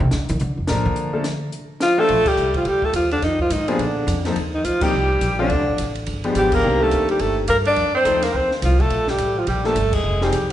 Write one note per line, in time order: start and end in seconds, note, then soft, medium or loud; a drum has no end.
0.00 0.11 C3 loud
0.11 0.29 D3 medium
0.11 snare medium
0.11 closed hi-hat soft
0.29 0.40 D#3 loud
0.29 closed hi-hat medium
0.40 0.57 D3 medium
0.40 closed hi-hat soft
0.57 0.68 F2 medium
0.67 0.85 A2 medium
0.67 1.10 F3 medium
0.67 1.10 A#3 medium
0.67 1.10 D4 medium
0.67 1.10 A4 medium
0.67 1.10 A#4 medium
0.67 snare medium
0.67 closed hi-hat medium
0.86 1.49 D3 medium
0.96 closed hi-hat soft
1.13 1.23 F3 medium
1.13 1.23 A3 medium
1.13 1.23 A#3 medium
1.13 1.23 D4 medium
1.13 1.23 A4 medium
1.24 snare medium
1.24 closed hi-hat medium
1.52 closed hi-hat soft
1.80 2.00 F3 medium
1.80 2.01 F4 loud
1.80 snare medium
1.80 closed hi-hat medium
1.98 2.08 F3 medium
1.98 2.08 A3 medium
1.98 2.29 A3 loud
1.98 2.08 A#3 medium
1.98 2.08 D4 medium
1.98 2.30 A4 loud
1.98 2.08 C5 medium
2.09 2.25 A#1 medium
2.09 ride medium
2.26 2.55 G3 medium
2.26 2.56 G4 loud
2.26 muted upright bass stroke soft
2.26 kick medium
2.26 crash medium
2.37 2.65 C2 medium
2.37 hi-hat pedal soft
2.54 2.68 F3 medium
2.54 2.70 F4 medium
2.54 kick medium
2.54 ride soft
2.65 2.93 D2 medium
2.65 2.85 G3 medium
2.65 2.87 G4 loud
2.65 ride medium
2.82 2.94 A3 medium
2.82 2.95 A4 medium
2.82 kick medium
2.93 3.21 D#2 medium
2.93 3.11 F3 medium
2.93 3.11 F4 medium
2.93 hi-hat pedal medium
2.93 ride medium
3.11 3.25 D3 medium
3.11 3.26 D4 medium
3.11 ride soft
3.22 3.49 F2 medium
3.22 3.40 D#3 medium
3.22 3.41 D#4 medium
3.22 snare soft
3.22 ride medium
3.39 3.54 F3 medium
3.39 3.54 F4 medium
3.39 kick medium
3.50 3.78 G#2 medium
3.50 3.71 D#3 medium
3.50 3.70 D#4 medium
3.50 hi-hat pedal medium
3.50 ride medium
3.68 3.82 C3 medium
3.68 3.78 F3 medium
3.68 3.78 A#3 medium
3.68 3.78 B3 medium
3.68 3.81 C4 medium
3.68 3.78 D4 medium
3.68 3.78 G#4 medium
3.68 ride soft
3.79 4.06 A#2 medium
3.79 4.26 D3 medium
3.79 4.25 D4 medium
3.79 ride medium
4.07 4.35 F2 loud
4.07 hi-hat pedal medium
4.07 ride medium
4.25 4.35 F3 medium
4.25 4.35 A#3 medium
4.25 4.36 C4 medium
4.25 4.36 D#4 medium
4.25 4.36 A4 medium
4.25 snare soft
4.25 ride soft
4.36 4.63 D#2 medium
4.36 ride medium
4.54 4.66 D#3 medium
4.54 4.66 D#4 medium
4.64 4.92 D2 medium
4.64 4.84 F3 medium
4.64 4.85 F4 medium
4.64 hi-hat pedal soft
4.64 ride medium
4.81 4.92 F3 medium
4.81 5.39 G3 medium
4.81 4.92 A#3 medium
4.81 4.92 C4 medium
4.81 4.92 D#4 medium
4.81 4.92 G4 medium
4.81 5.39 G4 loud
4.81 kick medium
4.81 crash medium
4.93 5.21 C2 medium
5.21 5.49 A#1 medium
5.21 hi-hat pedal medium
5.21 ride medium
5.39 5.92 D3 medium
5.39 5.49 F3 medium
5.39 5.49 A3 medium
5.39 5.49 C4 medium
5.39 5.49 D4 medium
5.39 5.93 D4 loud
5.39 5.49 F4 medium
5.50 5.59 D2 medium
5.50 ride medium
5.59 5.68 C2 medium
5.69 5.78 A1 medium
5.78 6.06 A1 medium
5.78 hi-hat pedal medium
5.78 ride medium
5.95 ride medium
6.06 6.34 G1 medium
6.06 ride medium
6.24 6.61 F3 medium
6.24 6.61 G#3 medium
6.24 6.61 B3 medium
6.24 6.62 D4 medium
6.24 6.62 G4 medium
6.24 ride soft
6.35 6.63 G#1 medium
6.35 6.55 G3 medium
6.35 6.56 G4 medium
6.35 hi-hat pedal medium
6.35 ride medium
6.52 6.82 A#3 medium
6.52 6.84 A#4 loud
6.52 kick medium
6.52 crash medium
6.63 6.91 C2 medium
6.63 7.42 D#3 medium
6.63 7.42 A#3 medium
6.63 7.42 C4 medium
6.63 7.43 D4 medium
6.63 7.43 G4 medium
6.81 7.09 A3 medium
6.81 7.10 A4 medium
6.91 7.19 D2 medium
6.91 hi-hat pedal medium
6.91 ride medium
7.09 7.22 G3 medium
7.09 7.23 G4 medium
7.09 ride soft
7.19 7.48 G1 medium
7.19 7.38 A3 medium
7.19 7.38 A4 medium
7.19 ride medium
7.48 7.76 G2 medium
7.48 7.56 A#3 medium
7.48 7.57 A#4 loud
7.48 hi-hat pedal medium
7.48 ride medium
7.65 7.93 D4 medium
7.65 7.93 D5 loud
7.65 ride soft
7.76 8.04 F2 medium
7.76 ride medium
7.95 8.25 C4 medium
7.95 8.26 C5 loud
8.04 8.33 D#2 medium
8.04 8.21 F3 medium
8.04 8.21 A3 medium
8.04 8.21 C4 medium
8.04 8.21 D#4 medium
8.04 8.21 A4 medium
8.04 hi-hat pedal medium
8.04 ride medium
8.22 8.34 A#3 medium
8.22 8.38 A#4 medium
8.22 snare soft
8.22 ride medium
8.33 8.62 D2 medium
8.33 8.51 C4 medium
8.33 8.53 C5 medium
8.51 snare soft
8.62 8.90 C2 medium
8.62 8.81 F3 medium
8.62 8.82 F4 medium
8.62 snare soft
8.62 hi-hat pedal medium
8.62 ride medium
8.79 9.10 A3 medium
8.79 9.11 A4 loud
8.79 kick medium
8.79 ride soft
8.90 9.18 A#1 medium
8.90 ride medium
9.08 9.39 G3 medium
9.08 9.41 G4 medium
9.08 snare medium
9.18 9.47 A1 medium
9.18 hi-hat pedal medium
9.18 ride medium
9.37 9.47 F3 medium
9.37 9.49 F4 medium
9.47 9.75 A#1 medium
9.47 9.67 G3 medium
9.47 9.68 G4 medium
9.47 ride medium
9.64 9.75 F3 medium
9.64 9.95 A3 medium
9.64 9.75 A3 medium
9.64 9.75 A#3 medium
9.64 9.75 D4 medium
9.64 9.75 A4 medium
9.64 9.96 A4 medium
9.64 snare soft
9.75 10.03 G1 medium
9.75 hi-hat pedal medium
9.75 ride medium
9.93 10.24 G#3 medium
9.93 10.25 G#4 loud
9.93 kick medium
9.93 crash medium
10.03 10.32 F1 medium
10.21 10.32 F3 medium
10.21 10.52 G3 medium
10.21 10.32 G#3 medium
10.21 10.32 C4 medium
10.21 10.32 D#4 medium
10.21 10.53 G4 medium
10.21 10.32 G#4 medium
10.21 snare medium
10.32 10.53 C2 medium
10.32 hi-hat pedal medium
10.32 ride medium